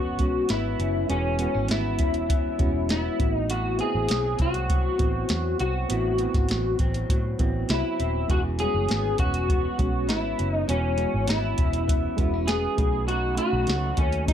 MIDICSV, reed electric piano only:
0, 0, Header, 1, 2, 480
1, 0, Start_track
1, 0, Key_signature, 4, "major"
1, 0, Tempo, 599401
1, 877, Time_signature, 4, 2, 24, 8
1, 11476, End_track
2, 0, Start_track
2, 0, Title_t, "Reed electric piano"
2, 0, Program_c, 0, 4
2, 0, Control_c, 0, 64, 127
2, 0, Note_on_c, 0, 56, 61
2, 0, Note_on_c, 0, 59, 56
2, 0, Note_on_c, 0, 61, 53
2, 0, Note_on_c, 0, 66, 68
2, 149, Note_off_c, 0, 56, 0
2, 149, Note_on_c, 0, 56, 59
2, 155, Note_off_c, 0, 59, 0
2, 155, Note_on_c, 0, 59, 57
2, 163, Note_off_c, 0, 61, 0
2, 163, Note_on_c, 0, 61, 58
2, 170, Note_off_c, 0, 66, 0
2, 170, Note_on_c, 0, 66, 72
2, 626, Note_off_c, 0, 56, 0
2, 629, Note_off_c, 0, 59, 0
2, 633, Note_off_c, 0, 61, 0
2, 637, Note_off_c, 0, 66, 0
2, 868, Note_on_c, 0, 56, 65
2, 876, Note_on_c, 0, 59, 60
2, 882, Note_on_c, 0, 61, 59
2, 891, Note_on_c, 0, 66, 70
2, 1031, Note_off_c, 0, 56, 0
2, 1035, Note_off_c, 0, 59, 0
2, 1037, Note_off_c, 0, 61, 0
2, 1042, Note_off_c, 0, 66, 0
2, 1109, Note_on_c, 0, 56, 64
2, 1114, Note_on_c, 0, 59, 59
2, 1124, Note_on_c, 0, 61, 58
2, 1128, Note_on_c, 0, 66, 70
2, 1745, Note_off_c, 0, 56, 0
2, 1747, Note_off_c, 0, 59, 0
2, 1752, Note_off_c, 0, 61, 0
2, 1754, Note_off_c, 0, 66, 0
2, 2068, Note_on_c, 0, 56, 71
2, 2075, Note_on_c, 0, 59, 70
2, 2083, Note_on_c, 0, 61, 64
2, 2087, Note_on_c, 0, 66, 87
2, 2543, Note_off_c, 0, 59, 0
2, 2547, Note_off_c, 0, 56, 0
2, 2552, Note_on_c, 0, 59, 63
2, 2554, Note_off_c, 0, 61, 0
2, 2556, Note_off_c, 0, 66, 0
2, 2558, Note_on_c, 0, 60, 60
2, 2564, Note_on_c, 0, 64, 69
2, 2568, Control_c, 0, 64, 0
2, 2573, Note_on_c, 0, 66, 80
2, 2696, Control_c, 0, 64, 127
2, 2940, Note_off_c, 0, 59, 0
2, 2943, Note_off_c, 0, 60, 0
2, 2946, Note_off_c, 0, 64, 0
2, 2950, Note_off_c, 0, 66, 0
2, 3029, Note_on_c, 0, 59, 61
2, 3033, Note_on_c, 0, 60, 57
2, 3043, Note_on_c, 0, 64, 59
2, 3048, Note_on_c, 0, 66, 67
2, 3665, Note_off_c, 0, 59, 0
2, 3667, Note_off_c, 0, 60, 0
2, 3672, Note_off_c, 0, 64, 0
2, 3675, Note_off_c, 0, 66, 0
2, 3988, Note_on_c, 0, 59, 67
2, 3994, Note_on_c, 0, 60, 61
2, 4002, Note_on_c, 0, 64, 58
2, 4007, Note_on_c, 0, 66, 77
2, 4467, Note_off_c, 0, 59, 0
2, 4470, Note_off_c, 0, 60, 0
2, 4474, Note_off_c, 0, 64, 0
2, 4477, Note_off_c, 0, 66, 0
2, 4716, Note_on_c, 0, 59, 65
2, 4724, Note_on_c, 0, 60, 59
2, 4729, Note_on_c, 0, 64, 54
2, 4735, Note_on_c, 0, 66, 72
2, 4876, Note_off_c, 0, 59, 0
2, 4880, Note_off_c, 0, 60, 0
2, 4882, Note_off_c, 0, 64, 0
2, 4885, Note_off_c, 0, 66, 0
2, 4958, Note_on_c, 0, 59, 62
2, 4965, Note_on_c, 0, 60, 60
2, 4971, Note_on_c, 0, 64, 53
2, 4977, Note_on_c, 0, 66, 71
2, 5590, Note_off_c, 0, 59, 0
2, 5593, Note_off_c, 0, 60, 0
2, 5596, Note_off_c, 0, 64, 0
2, 5600, Note_off_c, 0, 66, 0
2, 5916, Note_on_c, 0, 59, 69
2, 5922, Note_on_c, 0, 60, 73
2, 5928, Note_on_c, 0, 64, 74
2, 5935, Note_on_c, 0, 66, 84
2, 6391, Note_off_c, 0, 59, 0
2, 6394, Note_off_c, 0, 60, 0
2, 6397, Note_off_c, 0, 64, 0
2, 6400, Note_off_c, 0, 66, 0
2, 6631, Note_on_c, 0, 56, 66
2, 6639, Note_on_c, 0, 59, 62
2, 6645, Note_on_c, 0, 61, 57
2, 6649, Control_c, 0, 64, 0
2, 6650, Note_on_c, 0, 66, 69
2, 6793, Note_off_c, 0, 56, 0
2, 6797, Note_off_c, 0, 59, 0
2, 6800, Note_off_c, 0, 61, 0
2, 6802, Note_off_c, 0, 66, 0
2, 6807, Control_c, 0, 64, 127
2, 6874, Note_on_c, 0, 55, 50
2, 6877, Note_on_c, 0, 59, 57
2, 6886, Note_on_c, 0, 61, 57
2, 6893, Note_on_c, 0, 66, 65
2, 6924, Note_on_c, 0, 56, 58
2, 6929, Note_off_c, 0, 55, 0
2, 7508, Note_off_c, 0, 59, 0
2, 7513, Note_off_c, 0, 61, 0
2, 7516, Note_off_c, 0, 66, 0
2, 7532, Note_off_c, 0, 56, 0
2, 7831, Note_on_c, 0, 56, 68
2, 7840, Note_on_c, 0, 59, 63
2, 7847, Note_on_c, 0, 61, 60
2, 7851, Note_on_c, 0, 66, 71
2, 8307, Note_off_c, 0, 56, 0
2, 8312, Note_off_c, 0, 59, 0
2, 8315, Note_off_c, 0, 61, 0
2, 8317, Note_off_c, 0, 66, 0
2, 8550, Note_on_c, 0, 56, 69
2, 8556, Note_on_c, 0, 59, 61
2, 8564, Note_on_c, 0, 61, 57
2, 8569, Note_on_c, 0, 66, 75
2, 8711, Note_off_c, 0, 56, 0
2, 8714, Note_off_c, 0, 59, 0
2, 8718, Note_off_c, 0, 61, 0
2, 8721, Note_off_c, 0, 66, 0
2, 8786, Note_on_c, 0, 56, 60
2, 8792, Note_on_c, 0, 59, 53
2, 8801, Note_on_c, 0, 61, 58
2, 8807, Note_on_c, 0, 66, 73
2, 9421, Note_off_c, 0, 56, 0
2, 9424, Note_off_c, 0, 59, 0
2, 9429, Note_off_c, 0, 61, 0
2, 9432, Note_off_c, 0, 66, 0
2, 9745, Note_on_c, 0, 56, 83
2, 9753, Note_on_c, 0, 59, 70
2, 9758, Note_on_c, 0, 61, 73
2, 9767, Note_on_c, 0, 66, 81
2, 10222, Note_off_c, 0, 61, 0
2, 10223, Note_off_c, 0, 56, 0
2, 10223, Note_on_c, 0, 57, 72
2, 10226, Note_off_c, 0, 59, 0
2, 10231, Note_on_c, 0, 61, 61
2, 10233, Note_off_c, 0, 66, 0
2, 10235, Note_on_c, 0, 63, 65
2, 10242, Note_on_c, 0, 66, 78
2, 10244, Control_c, 0, 64, 0
2, 10372, Control_c, 0, 64, 127
2, 10612, Note_off_c, 0, 57, 0
2, 10617, Note_off_c, 0, 61, 0
2, 10618, Note_off_c, 0, 63, 0
2, 10622, Note_off_c, 0, 66, 0
2, 10701, Note_on_c, 0, 57, 68
2, 10708, Note_on_c, 0, 61, 57
2, 10714, Note_on_c, 0, 63, 63
2, 10721, Note_on_c, 0, 66, 67
2, 11337, Note_off_c, 0, 57, 0
2, 11340, Note_off_c, 0, 61, 0
2, 11343, Note_off_c, 0, 63, 0
2, 11347, Note_off_c, 0, 66, 0
2, 11476, End_track
0, 0, End_of_file